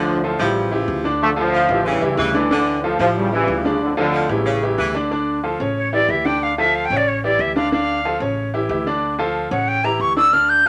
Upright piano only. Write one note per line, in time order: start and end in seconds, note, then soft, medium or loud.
0.00 0.17 D3 medium
0.00 0.18 D4 medium
0.00 0.18 D5 loud
0.24 0.37 F3 medium
0.24 0.37 F4 medium
0.24 0.37 A4 medium
0.40 0.66 E4 medium
0.40 0.66 G4 medium
0.71 0.98 C#3 medium
0.71 0.98 E4 medium
0.71 0.99 G4 medium
1.04 1.31 D3 medium
1.04 1.31 D4 medium
1.04 1.31 D5 medium
1.36 1.63 F3 medium
1.36 1.64 F4 medium
1.36 1.64 A4 medium
1.70 1.97 E3 medium
1.70 1.97 E4 medium
1.70 1.97 G4 medium
2.02 2.28 E3 medium
2.02 2.29 E4 medium
2.02 2.29 G4 medium
2.34 2.48 D3 loud
2.34 2.48 D4 medium
2.34 2.48 D5 medium
2.51 2.77 D3 loud
2.51 2.78 D4 loud
2.51 2.78 D5 loud
2.84 2.97 F3 medium
2.84 2.97 F4 medium
2.84 2.97 A4 medium
3.00 3.27 F3 medium
3.00 3.27 E4 medium
3.00 3.27 G4 medium
3.33 3.59 C#3 medium
3.33 3.59 E4 medium
3.33 3.59 G4 medium
3.65 3.92 D3 loud
3.65 3.92 D4 medium
3.65 3.92 D5 medium
3.97 4.24 F3 medium
3.97 4.24 F4 medium
3.97 4.24 A4 medium
4.29 4.56 E3 medium
4.29 4.56 E4 medium
4.29 4.56 G4 medium
4.63 4.89 E3 medium
4.63 4.89 E4 medium
4.63 4.90 G4 medium
4.95 5.08 D3 medium
4.95 5.08 D4 medium
4.95 5.08 D5 medium
5.11 5.38 D3 medium
5.11 5.38 D4 medium
5.11 5.38 D5 loud
5.43 5.57 F3 medium
5.43 5.57 F4 medium
5.43 5.57 A4 medium
5.60 5.87 C#3 medium
5.60 5.87 C#4 medium
5.60 5.87 C#5 medium
5.93 6.06 E3 medium
5.93 6.06 E4 medium
5.93 6.06 G4 medium
6.09 6.22 E3 medium
6.09 6.22 E4 medium
6.09 6.23 G4 medium
6.25 6.52 D3 medium
6.25 6.52 D4 medium
6.25 6.52 D5 medium
6.58 6.85 F3 medium
6.58 6.85 F4 medium
6.58 6.85 A4 medium
6.91 7.18 C#3 medium
6.91 7.18 C#4 medium
6.91 7.18 C#5 medium
7.24 7.50 E3 medium
7.24 7.50 E4 medium
7.24 7.51 G4 medium
7.56 7.69 D3 loud
7.56 7.69 D4 medium
7.56 7.70 D5 medium
7.72 7.99 D3 medium
7.72 7.99 D4 loud
7.72 7.99 D5 medium
8.05 8.18 F3 medium
8.05 8.18 F4 medium
8.05 8.18 A4 medium
8.21 8.48 C#3 medium
8.21 8.48 C#4 medium
8.21 8.48 C#5 medium
8.54 8.67 E3 medium
8.54 8.67 E4 medium
8.54 8.67 G4 medium
8.70 8.83 E3 medium
8.70 8.83 E4 medium
8.70 8.84 G4 medium
8.87 9.13 D3 medium
8.87 9.13 D4 medium
8.87 9.13 D5 loud
9.19 9.45 F3 medium
9.19 9.46 F4 medium
9.19 9.46 A4 medium
9.51 9.78 C#3 medium
9.51 9.78 C#4 medium
9.51 9.78 C#5 medium
9.84 10.10 E3 medium
9.84 10.11 E4 medium
9.84 10.11 G4 medium
10.16 10.30 D3 medium
10.16 10.30 D4 medium
10.16 10.30 D5 medium
10.33 10.60 D3 medium
10.33 10.60 D4 medium
10.33 10.60 D5 medium